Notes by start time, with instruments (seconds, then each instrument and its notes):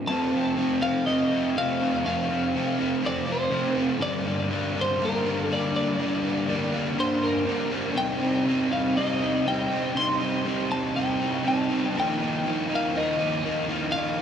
0.07 overdriven electric guitar F2 C3 F3 A3 C4, clean electric guitar A5
0.32 overdriven electric guitar F3 A3 C4
0.56 overdriven electric guitar C3 F3 A3 C4
0.80 overdriven electric guitar F3 A3 C4, clean electric guitar F5
1.05 overdriven electric guitar F2 C3 F3 A3 C4, clean electric guitar D#5
1.31 overdriven electric guitar F3 A3 C4
1.55 overdriven electric guitar C3 F3 A3 C4, clean electric guitar F5
1.79 overdriven electric guitar F3 A3 C4
2.03 overdriven electric guitar F2 C3 F3 A3 C4, clean electric guitar F5
2.29 overdriven electric guitar F3 A3 C4
2.53 overdriven electric guitar C3 F3 A3 C4
2.77 overdriven electric guitar F3 A3 C4
3.02 overdriven electric guitar F2 C3 F3 A3 C4
3.06 clean electric guitar D5
3.26 overdriven electric guitar F3 A3 C4
3.32 clean electric guitar C5
3.50 overdriven electric guitar C3 F3 A3 C4
3.75 overdriven electric guitar F3 A3 C4
3.99 overdriven electric guitar G2 D3 G3 A#3 D4, clean electric guitar D5
4.25 overdriven electric guitar G3 A#3 D4
4.49 overdriven electric guitar D3 G3 A#3 D4
4.75 overdriven electric guitar G3 A#3 D4
4.81 clean electric guitar C5
4.99 overdriven electric guitar G2 D3 G3 A#3 D4
5.05 clean electric guitar A#4
5.24 overdriven electric guitar G3 A#3 D4
5.41 clean electric guitar A4
5.48 overdriven electric guitar D3 G3 A#3 D4
5.53 clean electric guitar D5
5.73 overdriven electric guitar G3 A#3 D4, clean electric guitar D5
5.97 overdriven electric guitar G2 D3 G3 A#3 D4
6.23 overdriven electric guitar G3 A#3 D4
6.47 overdriven electric guitar D3 G3 A#3 D4
6.72 overdriven electric guitar G3 A#3 D4
6.97 overdriven electric guitar G2 D3 G3 A#3 D4, clean electric guitar C5
7.22 overdriven electric guitar G3 A#3 D4, clean electric guitar A#4
7.46 overdriven electric guitar D3 G3 A#3 D4
7.70 overdriven electric guitar G3 A#3 D4
7.94 overdriven electric guitar C3 G3 C4 D#4, clean electric guitar G5
8.20 overdriven electric guitar G3 C4 D#4
8.45 overdriven electric guitar C3 G3 C4 D#4
8.70 overdriven electric guitar G3 C4 D#4, clean electric guitar F5
8.96 overdriven electric guitar C3 G3 C4 D#4, clean electric guitar D#5
9.21 overdriven electric guitar G3 C4 D#4
9.46 overdriven electric guitar C3 G3 C4 D#4, clean electric guitar G5
9.70 overdriven electric guitar G3 C4 D#4
9.94 overdriven electric guitar C3 G3 C4 D#4, clean electric guitar C6
10.20 overdriven electric guitar G3 C4 D#4
10.44 overdriven electric guitar C3 G3 C4 D#4
10.70 overdriven electric guitar G3 C4 D#4, clean electric guitar A5
10.95 overdriven electric guitar C3 G3 C4 D#4, clean electric guitar G5
11.19 overdriven electric guitar G3 C4 D#4
11.44 overdriven electric guitar C3 G3 C4 D#4
11.48 clean electric guitar A5
11.69 overdriven electric guitar G3 C4 D#4
11.95 overdriven electric guitar D#3 F3 A#3 D#4
12.00 clean electric guitar G5
12.19 overdriven electric guitar F3 A#3 D#4
12.44 overdriven electric guitar D#3 F3 A#3 D#4
12.69 overdriven electric guitar F3 A#3 D#4
12.75 clean electric guitar F5
12.94 overdriven electric guitar D#3 F3 A#3 D#4, clean electric guitar D#5
13.19 overdriven electric guitar F3 A#3 D#4
13.44 overdriven electric guitar D#3 F3 A#3 D#4
13.68 overdriven electric guitar F3 A#3 D#4
13.92 overdriven electric guitar D#3 F3 A#3, clean electric guitar F5
13.96 overdriven electric guitar D#4
14.18 overdriven electric guitar D#4